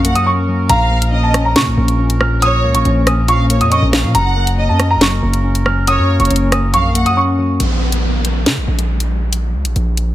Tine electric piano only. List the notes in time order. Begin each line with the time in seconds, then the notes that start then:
Already playing: F#2 F#3 A#3 C#4
0.05 A#3
0.26 C#4
0.48 F#3
0.69 A#2
0.91 A#3
1.13 C#4
1.34 C#4
1.56 A#2
1.77 A#3
1.99 C#4
2.20 F3
2.42 A#2
2.64 A#3
2.85 C#4
3.07 C#4
3.28 A#2
3.50 A#3
3.71 C#4
3.93 F3
4.15 F#2
4.36 A#3
4.58 C#4
4.79 C#4
5.01 F#2
5.23 A#3
5.44 C#4
5.66 F#3
5.87 F#2
6.09 A#3
6.30 C#4
6.52 C#4
6.74 F#2
6.95 A#3
7.17 C#4
7.38 F#3